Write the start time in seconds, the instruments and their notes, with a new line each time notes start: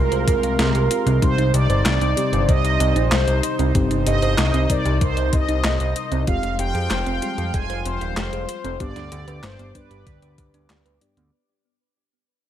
Already playing: fm electric piano G#3 C4 F4 G#4, analog synth pad G#3 F5 C6, synth arpeggio sound G#4, analog polysynth A#4
0.12 analog synth bass C2, synth arpeggio sound C5, closed hi-hat
0.27 analog synth bass C2, analog polysynth A#4, synth arpeggio sound F5, kick, closed hi-hat
0.43 analog synth bass C2, synth arpeggio sound F5, closed hi-hat
0.59 analog synth bass C2, synth arpeggio sound G#4, snare, closed hi-hat
0.75 analog synth bass C2, synth arpeggio sound G4, closed hi-hat
0.91 fm electric piano G#3 C4 F4 G4, synth arpeggio sound G4, closed hi-hat
1.06 analog synth bass C2, synth arpeggio sound C4, closed hi-hat
1.22 analog synth bass C2, fm electric piano C3 G3 C4 D#4 G4, synth arpeggio sound C4, analog synth pad D#4 C5, analog polysynth C5, kick, closed hi-hat
1.38 analog synth bass C2, synth arpeggio sound D#4, closed hi-hat
1.54 analog synth bass C2, synth arpeggio sound G4, analog polysynth D5, closed hi-hat
1.70 analog synth bass G1, synth arpeggio sound C5, closed hi-hat
1.85 analog synth bass C2, synth arpeggio sound D#5, snare, clap, closed hi-hat
2.01 analog synth bass C2, synth arpeggio sound C4, closed hi-hat
2.17 fm electric piano C3 G3 C4 D#4 G4, synth arpeggio sound D#4, closed hi-hat
2.33 analog synth bass G1, synth arpeggio sound G4, closed hi-hat
2.49 analog synth bass C2, synth arpeggio sound C5, analog polysynth D#5, kick, closed hi-hat
2.64 analog synth bass C2, synth arpeggio sound D#5, closed hi-hat
2.80 analog synth bass C2, synth arpeggio sound C4, closed hi-hat
2.96 analog synth bass A#1, synth arpeggio sound D#4, closed hi-hat
3.12 analog synth bass C2, synth arpeggio sound G4, analog polysynth C5, snare, clap, closed hi-hat
3.28 analog synth bass C2, synth arpeggio sound C5, closed hi-hat
3.43 synth arpeggio sound D#5, closed hi-hat
3.59 analog synth bass C2, synth arpeggio sound C4, closed hi-hat
3.75 analog synth bass G1, fm electric piano C3 G3 C4 D#4 G4, synth arpeggio sound C4, kick, closed hi-hat
3.91 analog synth bass G1, synth arpeggio sound D#4, closed hi-hat
4.07 analog synth bass G1, synth arpeggio sound G4, analog polysynth D#5, closed hi-hat
4.22 analog synth bass G1, synth arpeggio sound C5, closed hi-hat
4.38 analog synth bass C2, synth arpeggio sound D#5, snare, clap, closed hi-hat
4.54 analog synth bass C2, synth arpeggio sound C4, closed hi-hat
4.70 fm electric piano C3 G3 C4 D#4 A#4, synth arpeggio sound D#4, analog polysynth D5, kick, closed hi-hat
4.86 analog synth bass C2, synth arpeggio sound G4, closed hi-hat
5.01 analog synth bass C2, synth arpeggio sound C5, analog polysynth C5, kick, closed hi-hat
5.17 analog synth bass C2, synth arpeggio sound D#5, closed hi-hat
5.33 analog synth bass C2, synth arpeggio sound C4, analog polysynth D#5, kick, closed hi-hat
5.49 analog synth bass C2, synth arpeggio sound D#4, closed hi-hat
5.64 analog synth bass C2, synth arpeggio sound G4, snare, clap, closed hi-hat
5.80 analog synth bass C2, synth arpeggio sound C5, closed hi-hat
5.96 synth arpeggio sound D#5, closed hi-hat
6.12 analog synth bass C2, synth arpeggio sound C4, closed hi-hat
6.27 analog synth bass F1, analog synth pad F3 F5 C6, fm electric piano G#3 C4 F4 G4, synth arpeggio sound C4, analog polysynth F5, kick, closed hi-hat
6.43 analog synth bass F1, synth arpeggio sound F4, closed hi-hat
6.59 analog synth bass F1, synth arpeggio sound G4, analog polysynth G5, closed hi-hat
6.75 analog synth bass F2, synth arpeggio sound G#4, closed hi-hat
6.91 analog synth bass F1, synth arpeggio sound C5, snare, clap, closed hi-hat
7.06 analog synth bass F1, synth arpeggio sound C4, closed hi-hat
7.22 fm electric piano G3 G#3 C4 F4, synth arpeggio sound F4, closed hi-hat
7.38 analog synth bass F2, synth arpeggio sound G4, closed hi-hat
7.54 analog synth bass F1, synth arpeggio sound G#4, analog polysynth G#5, kick, closed hi-hat
7.70 analog synth bass F1, synth arpeggio sound C5, closed hi-hat
7.85 analog synth bass F1, synth arpeggio sound C4, analog polysynth C5, closed hi-hat
8.01 analog synth bass D#1, synth arpeggio sound F4, closed hi-hat
8.17 analog synth bass F1, synth arpeggio sound G4, snare, clap, closed hi-hat
8.33 analog synth bass F1, synth arpeggio sound G#4, closed hi-hat
8.49 synth arpeggio sound C5, closed hi-hat
8.64 analog synth bass F1, synth arpeggio sound C4, closed hi-hat
8.80 analog synth bass G1, fm electric piano G2 G3 B3 D4 G4, synth arpeggio sound B3, analog synth pad G4 D5 D6, analog polysynth D5, kick, closed hi-hat
8.96 analog synth bass D2, synth arpeggio sound D4, snare, closed hi-hat
9.12 analog synth bass D2, synth arpeggio sound G4, closed hi-hat
9.28 analog synth bass D2, synth arpeggio sound B4, closed hi-hat
9.43 analog synth bass G1, analog polysynth C5, synth arpeggio sound D5, snare, clap, closed hi-hat
9.59 analog synth bass G1, synth arpeggio sound B3, closed hi-hat
9.75 fm electric piano G2 G3 B3 D4 B4, synth arpeggio sound D4, analog polysynth B4, kick, closed hi-hat
9.91 analog synth bass G1, synth arpeggio sound G4, closed hi-hat
10.07 analog synth bass D2, synth arpeggio sound B4, kick, closed hi-hat
10.22 analog synth bass D2, synth arpeggio sound D5, closed hi-hat
10.38 analog synth bass D2, synth arpeggio sound B3, kick, closed hi-hat
10.54 analog synth bass D2, synth arpeggio sound D4, closed hi-hat
10.70 analog synth bass D2, synth arpeggio sound G4, snare, clap, closed hi-hat
10.86 analog synth bass D2, synth arpeggio sound B4, closed hi-hat
11.01 fm electric piano G2 G3 B3 D4 G4, synth arpeggio sound D5, closed hi-hat
11.17 analog synth bass D2, synth arpeggio sound B3, closed hi-hat